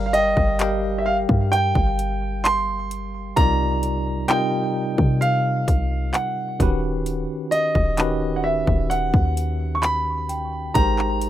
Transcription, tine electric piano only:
Already playing: G3 G4 A#4 D5 F5 A#5
0.59 G3 G4 A#4 F5 G5
3.36 C3 G3 D#4 F4 A#4 D5
4.28 C3 G3 D#4 F4 A#4 D#5
6.59 D#3 C#4 F#4 G4 B4
7.98 D#3 C#4 F#4 G4 B4
10.75 G#3 D#4 G4 A#4 C5

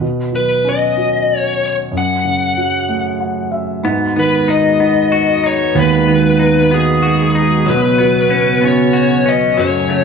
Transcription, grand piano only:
0.01 B2
0.32 F#3
0.64 C#4
0.97 F#4
1.92 F#2
2.25 C#3
2.57 F#3
2.88 A3
3.20 F#5
3.52 E5
3.83 G#2
4.16 D#3
4.48 B3
4.81 D#4
5.75 D#2
6.08 D#3
6.40 B3
6.71 D#4
7.68 B2
8.00 F#3
8.32 B3
8.63 C#4
9.58 F#2
9.91 C#3

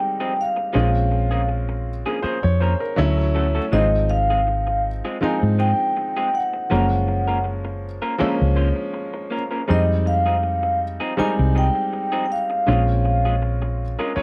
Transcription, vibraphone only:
Already playing: G5
0.41 F5
3.73 D#5
4.10 F5
5.24 G#5
5.60 G5
6.35 F#5
9.71 D#5
10.07 F5
11.19 G#5
11.58 G5
12.25 G5
12.32 F5

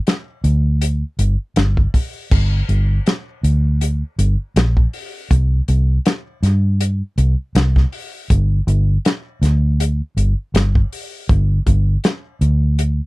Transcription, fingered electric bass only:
0.44 D2
1.19 G1
1.56 G1
2.32 G1
2.69 G1
3.43 D2
4.19 G1
4.56 A#1
5.31 C2
5.68 C2
6.43 G2
7.18 C2
7.55 C2
8.30 G1
8.67 G1
9.42 D2
10.17 G1
10.54 G1
11.29 G1
11.66 G1
12.41 D2

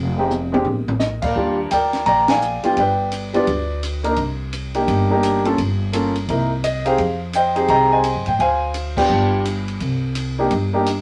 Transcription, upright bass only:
Already playing: F1
0.66 A#1
1.23 A#2
1.36 D#2
1.71 D2
2.06 A#1
2.64 muted upright bass stroke
2.77 G1
3.47 D2
4.17 C2
4.88 G1
5.58 G1
6.28 C2
6.98 F2
7.69 C2
8.16 G2
8.27 A2
8.39 D2
9.09 G1
9.81 C2
10.51 G1

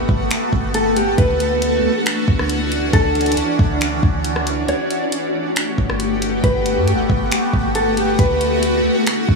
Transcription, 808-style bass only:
0.09 G1
0.53 G1
1.18 D2
2.28 D2
2.93 D2
3.59 D2
4.03 D2
5.78 G1
6.44 G1
6.77 G2
6.93 G1
7.10 G1
7.53 G1
8.19 D2
9.29 D2

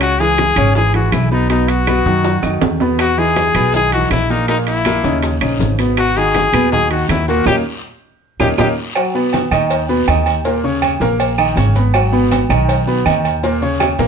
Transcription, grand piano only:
Already playing: C#3 C#4 C#5
0.20 E3 E4 G#4
0.57 C#3 C#4 C#5
0.76 E3 E4 G#4
0.94 E3 E4 G#4
1.31 B2 B3 B4
1.50 B2 B3 B4
1.87 B2 B3 B4
2.06 D#3 D#4 F#4
2.44 D#3 D#4 F#4
2.81 B2 B3 B4
3.17 E3 D#4 E4
3.55 B2 B3 B4
3.74 D#3 D#4 E4
3.93 E3 D#4 E4
4.30 A#2 A#3 A#4
4.48 A#2 A#3 A#4
4.86 A#2 A#3 A#4
5.04 C#3 C#4 D#4
5.41 C#3 C#4 D#4
5.79 B2 B3 B4
6.16 D#3 D#4 F#4
6.53 B2 B3 B4
6.72 D#3 D#4 F#4
6.91 D#3 D#4 F#4
7.28 A#2 A#3 A#4
7.47 A#3 C#4 D#4
8.40 A#3 C#4 D#4
8.59 A#3 C#4 D#4
8.96 F#3 F#4 F#5
9.14 B2 B3 B4
9.52 D#3 D#4 D#5
9.89 B2 B3 B4
10.08 D#3 D#4 D#5
10.45 A#2 A#3 A#4
10.64 C#3 C#4 C#5
11.01 A#3 A#4 A#5
11.38 D#3 D#4 D#5
11.56 C#3 C#4 C#5
11.75 B3 B4 B5
11.94 F#3 F#4 F#5
12.12 B2 B3 B4
12.50 D#3 D#4 D#5
12.87 B2 B3 B4
13.05 D#3 D#4 D#5
13.43 A#2 A#3 A#4
13.62 C#3 C#4 C#5
13.99 A#3 A#4 A#5

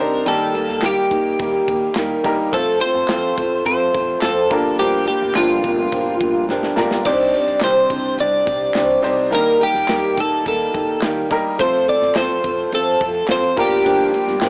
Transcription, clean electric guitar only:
Already playing: A#4
0.28 A4
0.86 G4
2.54 A4
2.81 C5
3.66 C5
4.22 A4
4.79 G4
5.08 G4
5.36 F4
7.06 D5
7.64 C5
8.21 D5
9.35 A#4
9.63 G4
10.20 A4
10.48 A4
11.61 C5
11.89 D5
12.17 C5
12.75 A4
13.32 C5
13.60 G4

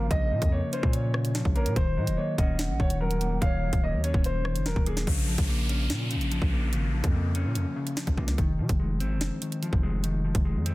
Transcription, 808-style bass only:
0.11 A#1
0.31 A#2
0.42 F2
0.83 A#2
1.45 A#1
1.66 A#2
1.76 D#1
1.97 A#2
2.07 D#1
2.38 D#1
2.69 A#1
2.80 D#1
3.42 D#1
3.73 D#1
3.93 D#2
4.14 D#1
4.55 F#1
4.66 D#1
4.76 D#1
5.07 A#1
5.38 A#1
5.90 A#2
6.16 A#1
6.42 A#1
6.73 G#1
6.88 A#1
7.04 F2
7.45 A#2
7.55 F2
8.07 A#1
8.18 C#2
8.38 F1
8.59 C3
8.69 F1
9.00 G#1
9.16 F1
9.73 F1
10.35 F1
10.55 F2

